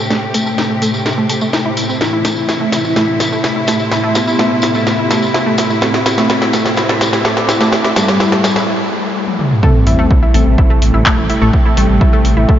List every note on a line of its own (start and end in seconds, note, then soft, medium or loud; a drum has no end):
0.00 1.97 A2 medium
0.00 5.78 C3 medium
0.00 8.64 A3 medium
0.00 1.97 G4 medium
0.00 0.10 A4 medium
0.00 2.62 A4 medium
0.00 2.95 G5 medium
0.10 0.19 A3 loud
0.10 snare medium
0.10 tambourine soft
0.34 0.97 A3 loud
0.34 0.46 A4 medium
0.34 open hi-hat loud
0.34 tambourine loud
0.47 0.55 A3 loud
0.47 tambourine medium
0.58 snare medium
0.58 tambourine soft
0.70 0.81 A4 medium
0.82 0.90 A3 loud
0.82 open hi-hat loud
0.82 tambourine medium
0.94 tambourine medium
1.06 1.17 A4 medium
1.06 snare medium
1.06 tambourine soft
1.18 1.26 A3 loud
1.29 1.38 A4 medium
1.29 open hi-hat loud
1.29 tambourine loud
1.41 1.47 A3 loud
1.41 tambourine medium
1.53 1.64 E4 medium
1.53 snare medium
1.53 tambourine soft
1.66 1.76 E4 medium
1.77 1.89 E4 medium
1.77 open hi-hat loud
1.77 tambourine loud
1.89 2.01 C4 medium
1.89 tambourine medium
2.01 8.64 A2 medium
2.01 8.68 A3 medium
2.01 2.63 E4 loud
2.01 8.64 E4 medium
2.01 snare medium
2.01 tambourine soft
2.13 2.24 E4 medium
2.13 6.60 E5 medium
2.18 8.68 G4 medium
2.25 2.33 A3 loud
2.25 snare medium
2.25 open hi-hat loud
2.25 tambourine medium
2.36 tambourine soft
2.49 2.60 E4 medium
2.49 snare medium
2.49 tambourine soft
2.61 2.69 A3 loud
2.72 3.35 E4 loud
2.72 6.70 C6 medium
2.72 snare medium
2.72 open hi-hat loud
2.72 tambourine medium
2.85 2.96 E4 medium
2.85 tambourine soft
2.96 3.05 A3 loud
2.96 snare medium
2.96 tambourine soft
3.20 3.32 E4 medium
3.20 snare medium
3.20 open hi-hat loud
3.20 tambourine medium
3.32 3.40 A3 loud
3.32 tambourine soft
3.44 snare medium
3.44 tambourine soft
3.56 3.67 E4 medium
3.67 3.76 A3 loud
3.67 snare medium
3.67 open hi-hat loud
3.67 tambourine medium
3.79 tambourine soft
3.92 4.03 E4 medium
3.92 snare medium
3.92 tambourine soft
4.04 4.12 A3 loud
4.15 4.77 B3 loud
4.15 snare medium
4.15 open hi-hat loud
4.15 tambourine medium
4.27 4.39 E4 medium
4.27 tambourine medium
4.39 4.48 A3 loud
4.39 snare medium
4.39 tambourine soft
4.62 4.74 E4 medium
4.62 snare medium
4.62 open hi-hat loud
4.62 tambourine medium
4.74 4.83 A3 loud
4.74 tambourine medium
4.87 snare medium
4.87 tambourine soft
4.99 5.10 E4 medium
5.11 5.19 A3 loud
5.11 snare medium
5.11 open hi-hat loud
5.11 tambourine loud
5.22 tambourine medium
5.34 5.46 E4 medium
5.34 snare medium
5.34 tambourine soft
5.46 5.55 A3 loud
5.58 snare medium
5.58 open hi-hat loud
5.58 tambourine medium
5.70 5.81 E4 medium
5.70 tambourine medium
5.81 5.90 A3 loud
5.81 6.44 C4 loud
5.81 8.65 C4 medium
5.81 snare medium
5.81 tambourine soft
5.94 snare medium
6.06 6.17 E4 medium
6.06 snare loud
6.06 open hi-hat loud
6.06 tambourine medium
6.18 6.26 A3 loud
6.18 snare medium
6.18 tambourine soft
6.29 snare medium
6.29 tambourine soft
6.42 6.53 E4 medium
6.42 8.68 D5 medium
6.42 snare medium
6.53 6.62 A3 loud
6.53 7.16 C4 loud
6.53 8.68 D6 medium
6.53 snare medium
6.53 open hi-hat medium
6.53 tambourine medium
6.66 snare medium
6.66 tambourine soft
6.76 6.89 E4 medium
6.76 snare medium
6.76 tambourine soft
6.89 6.97 A3 loud
6.89 snare medium
7.01 snare medium
7.01 open hi-hat loud
7.01 tambourine medium
7.13 7.24 E4 medium
7.13 snare medium
7.13 tambourine soft
7.25 7.33 A3 loud
7.25 snare loud
7.25 tambourine soft
7.37 snare medium
7.49 7.60 E4 medium
7.49 snare loud
7.49 open hi-hat loud
7.49 tambourine medium
7.61 7.69 A3 loud
7.61 snare medium
7.61 tambourine medium
7.72 snare loud
7.72 tambourine soft
7.84 7.96 E4 medium
7.84 snare medium
7.96 8.58 G3 loud
7.96 8.05 A3 loud
7.96 snare loud
7.96 open hi-hat loud
7.96 tambourine medium
8.08 snare medium
8.08 tambourine soft
8.20 8.32 E4 medium
8.20 snare loud
8.20 tambourine soft
8.32 8.40 A3 loud
8.32 snare medium
8.44 snare loud
8.44 open hi-hat loud
8.44 tambourine medium
8.56 8.67 E4 medium
8.56 snare medium
8.56 tambourine soft
9.27 high tom medium
9.39 mid tom medium
9.51 mid tom medium
9.63 12.59 C3 medium
9.63 12.59 G3 medium
9.63 9.71 A3 loud
9.63 12.59 A3 medium
9.63 10.25 C4 loud
9.63 9.71 A4 medium
9.63 12.59 A4 loud
9.63 kick loud
9.63 sub drop medium
9.72 12.59 G5 medium
9.87 9.96 A1 medium
9.87 9.98 E4 medium
9.87 9.98 E5 medium
9.87 open hi-hat loud
9.99 10.08 A1 medium
9.99 10.07 A3 loud
9.99 10.07 A4 medium
10.11 kick loud
10.23 10.34 E4 medium
10.23 10.34 E5 medium
10.23 12.59 C6 medium
10.34 10.44 A1 medium
10.34 10.43 A3 loud
10.34 10.96 C4 loud
10.34 10.43 A4 medium
10.34 open hi-hat medium
10.47 10.56 A1 medium
10.58 10.70 E4 medium
10.58 10.70 E5 medium
10.58 kick loud
10.70 10.78 A3 loud
10.70 10.78 A4 medium
10.82 10.92 A1 medium
10.82 open hi-hat loud
10.94 11.03 A1 medium
10.94 11.05 E4 medium
10.94 11.05 E5 medium
11.06 11.14 A3 loud
11.06 11.14 A4 medium
11.06 kick loud
11.06 clap loud
11.18 11.27 A1 medium
11.30 11.41 E4 medium
11.30 11.41 E5 medium
11.30 open hi-hat medium
11.42 11.51 A1 medium
11.42 11.50 A3 loud
11.42 11.50 A4 medium
11.53 kick loud
11.66 11.77 E4 medium
11.66 11.77 E5 medium
11.77 11.87 A1 loud
11.77 12.39 G3 loud
11.77 11.86 A3 loud
11.77 11.86 A4 medium
11.77 open hi-hat loud
11.89 11.99 A1 medium
12.01 12.13 E4 medium
12.01 12.13 E5 medium
12.01 kick loud
12.13 12.21 A3 loud
12.13 12.21 A4 medium
12.25 12.35 A1 medium
12.25 open hi-hat medium
12.37 12.46 A1 medium
12.37 12.48 E4 medium
12.37 12.48 E5 medium
12.49 12.57 A3 loud
12.49 12.57 A4 medium
12.49 kick loud